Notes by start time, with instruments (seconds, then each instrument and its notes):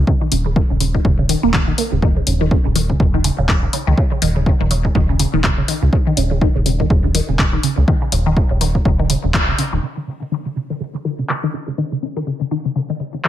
0.07 synth arpeggio sound C#3, kick
0.21 synth arpeggio sound D#3
0.32 analog synth bass D#1, synth arpeggio sound C#3, open hi-hat
0.46 synth arpeggio sound C#3
0.56 synth arpeggio sound D#3, kick
0.70 analog synth bass D#1, synth arpeggio sound C#3
0.80 synth arpeggio sound C#3, open hi-hat
0.95 synth arpeggio sound D#3, kick
1.05 analog synth bass D#1, synth arpeggio sound C#3, kick
1.19 synth arpeggio sound C#3
1.29 synth arpeggio sound D#3, open hi-hat
1.43 analog synth bass D#1, synth arpeggio sound A#3
1.54 synth arpeggio sound D#3, kick, clap
1.68 synth arpeggio sound D#3
1.78 synth arpeggio sound A#3, open hi-hat
1.92 analog synth bass D#1, synth arpeggio sound C#3
2.02 synth arpeggio sound D#3, kick
2.16 synth arpeggio sound C#3
2.27 analog synth bass D#1, synth arpeggio sound C#3, open hi-hat
2.41 synth arpeggio sound D#3
2.51 synth arpeggio sound C#3, kick
2.65 analog synth bass D#1, synth arpeggio sound C#3
2.76 synth arpeggio sound D#3, open hi-hat
2.90 synth arpeggio sound C#3, kick
3.00 analog synth bass D#1, synth arpeggio sound C#3, kick
3.14 synth arpeggio sound D#3
3.24 synth arpeggio sound C#3, open hi-hat
3.38 analog synth bass D#1, synth arpeggio sound C#3
3.49 synth arpeggio sound D#3, kick, clap
3.63 synth arpeggio sound C#3
3.73 synth arpeggio sound C#3, open hi-hat
3.87 analog synth bass C#2, synth arpeggio sound D#3
3.98 synth arpeggio sound C#3, kick
4.12 synth arpeggio sound C#3
4.22 analog synth bass D#1, synth arpeggio sound D#3, open hi-hat
4.36 synth arpeggio sound C#3
4.46 synth arpeggio sound C#3, kick
4.60 analog synth bass D#1, synth arpeggio sound D#3
4.71 synth arpeggio sound C#3, open hi-hat
4.85 synth arpeggio sound C#3, kick
4.95 analog synth bass D#1, synth arpeggio sound D#3, kick
5.09 synth arpeggio sound C#3
5.20 synth arpeggio sound C#3, open hi-hat
5.34 analog synth bass D#1, synth arpeggio sound D#3
5.44 synth arpeggio sound C#3, kick, clap
5.58 synth arpeggio sound C#3
5.68 synth arpeggio sound D#3, open hi-hat
5.82 analog synth bass C#2, synth arpeggio sound C#3
5.93 synth arpeggio sound C#3, kick
6.07 synth arpeggio sound D#3
6.17 analog synth bass D#1, synth arpeggio sound C#3, open hi-hat
6.31 synth arpeggio sound C#3
6.41 synth arpeggio sound D#3, kick
6.56 analog synth bass D#1, synth arpeggio sound C#3
6.66 synth arpeggio sound C#3, open hi-hat
6.80 synth arpeggio sound D#3, kick
6.90 analog synth bass D#1, synth arpeggio sound C#3, kick
7.04 synth arpeggio sound C#3
7.15 synth arpeggio sound D#3, open hi-hat
7.29 analog synth bass D#1, synth arpeggio sound C#3
7.39 synth arpeggio sound C#3, kick, clap
7.53 synth arpeggio sound D#3
7.63 synth arpeggio sound C#3, open hi-hat
7.77 analog synth bass C#2, synth arpeggio sound C#3
7.88 synth arpeggio sound D#3, kick
8.02 synth arpeggio sound C#3
8.12 analog synth bass D#1, synth arpeggio sound C#3, open hi-hat
8.26 synth arpeggio sound D#3
8.37 synth arpeggio sound C#3, kick
8.51 analog synth bass D#1, synth arpeggio sound C#3
8.61 synth arpeggio sound D#3, open hi-hat
8.75 synth arpeggio sound C#3, kick
8.85 analog synth bass D#1, synth arpeggio sound C#3, kick
8.99 synth arpeggio sound D#3
9.10 synth arpeggio sound C#3, open hi-hat
9.24 analog synth bass D#1, synth arpeggio sound C#3
9.34 synth arpeggio sound D#3, kick, clap
9.48 synth arpeggio sound C#3
9.59 synth arpeggio sound C#3, open hi-hat
9.73 analog synth bass D#1, synth arpeggio sound D#3
9.83 synth arpeggio sound C#3, crash
9.97 synth arpeggio sound D#3
10.07 analog synth bass D#1, synth arpeggio sound C#3
10.21 synth arpeggio sound C#3
10.32 synth arpeggio sound D#3
10.46 analog synth bass D#1, synth arpeggio sound C#3
10.56 synth arpeggio sound C#3
10.70 synth arpeggio sound D#3
10.80 analog synth bass D#1, synth arpeggio sound C#3
10.95 synth arpeggio sound C#3
11.05 synth arpeggio sound D#3
11.19 analog synth bass D#1, synth arpeggio sound C#3
11.29 synth arpeggio sound C#3, clap
11.43 synth arpeggio sound D#3
11.54 synth arpeggio sound C#3
11.68 analog synth bass C#2, synth arpeggio sound C#3
11.78 synth arpeggio sound D#3
11.92 synth arpeggio sound C#3
12.02 analog synth bass D#1, synth arpeggio sound C#3
12.17 synth arpeggio sound D#3
12.27 synth arpeggio sound C#3
12.41 analog synth bass D#1, synth arpeggio sound C#3
12.51 synth arpeggio sound D#3
12.65 synth arpeggio sound C#3
12.76 analog synth bass D#1, synth arpeggio sound C#3
12.90 synth arpeggio sound D#3
13.00 synth arpeggio sound C#3
13.14 analog synth bass D#1, synth arpeggio sound C#3
13.24 synth arpeggio sound D#3, clap